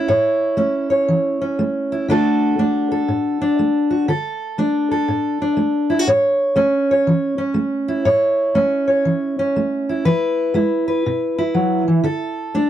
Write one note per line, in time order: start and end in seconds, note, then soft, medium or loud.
0.00 1.91 E4 medium
0.08 0.55 A2 medium
0.08 0.89 C#5 medium
0.57 1.04 A3 medium
0.57 1.40 C#4 medium
0.90 2.06 C#5 medium
1.08 1.55 E3 medium
1.41 2.06 C#4 soft
1.59 2.05 A3 medium
1.92 2.09 E4 medium
2.08 2.55 D3 medium
2.08 2.59 A3 medium
2.08 2.59 D4 medium
2.08 3.89 F#4 medium
2.08 2.91 A4 medium
2.59 3.05 A3 medium
2.59 3.40 D4 medium
2.92 4.08 A4 medium
3.08 3.55 A2 medium
3.42 4.06 D4 medium
3.59 4.05 A3 medium
3.91 4.06 F#4 medium
4.08 4.55 D3 medium
4.08 4.91 A4 medium
4.58 5.04 A3 medium
4.58 5.41 D4 medium
4.91 6.07 A4 medium
5.08 5.54 A2 medium
5.42 6.06 D4 medium
5.57 6.04 A3 medium
5.90 5.99 E4 medium
5.99 6.08 F#4 soft
6.07 6.54 A2 medium
6.07 6.91 C#5 medium
6.56 7.03 A3 medium
6.56 7.37 C#4 medium
6.91 8.04 C#5 medium
7.07 7.53 E3 medium
7.38 8.04 C#4 medium
7.54 8.02 A3 medium
7.88 9.88 E4 medium
8.05 8.52 A2 medium
8.05 8.86 C#5 medium
8.55 9.02 A3 medium
8.55 9.38 C#4 medium
8.88 10.03 C#5 medium
9.05 9.52 E3 medium
9.39 10.04 C#4 medium
9.56 10.03 A3 medium
9.89 10.54 E4 medium
10.05 10.52 E3 medium
10.05 10.87 B4 medium
10.54 11.01 G#3 medium
10.54 11.37 E4 medium
10.88 12.03 B4 medium
11.06 11.52 B2 medium
11.38 12.03 E4 medium
11.54 11.87 F#3 medium
11.88 12.03 E3 medium
12.04 12.50 D3 medium
12.04 12.70 A4 medium
12.54 12.70 A3 medium
12.54 12.70 D4 medium